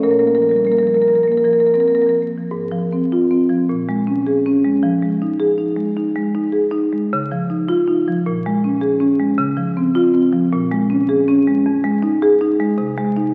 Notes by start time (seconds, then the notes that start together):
0.03 A#2 A#4
0.11 A#4
0.19 A#3 A#4
0.27 A#4
0.35 F3 A#4
0.42 A#4
0.49 G3 A#4
0.56 A#4
0.65 A#3 A#4
0.72 A#4
0.79 A#4
0.83 F3
0.87 A#4
0.94 A#3 A#4
1.02 A#4
1.08 A#4
1.13 F3 A#4
1.23 A#4
1.28 A#3
1.32 A#4
1.38 A#4
1.44 F3 A#4
1.53 A#4
1.59 A#3 A#4
1.67 A#4
1.74 C4 A#4
1.80 A#4
1.88 A#3 A#4
1.95 A#4
2.02 A#4
2.07 F3 A#4
2.22 A#3
2.37 F3
2.51 G#2
2.72 F3
2.93 C4
3.12 F4
3.31 C4
3.49 F3
3.69 A#2
3.89 G#3
4.07 C#4
4.27 G#4
4.46 C#4
4.65 G#3
4.83 F3
5.02 G#3
5.22 D#4
5.40 G#4
5.58 D#4
5.76 G#3
5.97 D#4
6.16 G#3
6.35 D#4
6.52 G#4
6.71 D#4
6.93 G#3
7.13 C#3
7.31 F3
7.50 D#4
7.69 F4
7.87 D#4
8.08 F3
8.26 A#2
8.46 G#3
8.64 C#4
8.81 G#4
9.00 C#4
9.20 G#3
9.38 C#3
9.57 F3
9.77 C4
9.95 F4
10.14 C4
10.32 F3
10.53 A#2
10.71 G#3
10.90 C#4
11.09 G#4
11.28 C#4
11.47 G#3
11.66 F2
11.84 G#3
12.03 D#4
12.22 G#4
12.41 D#4
12.60 G#3
12.78 C3
12.98 G#3
13.17 D#4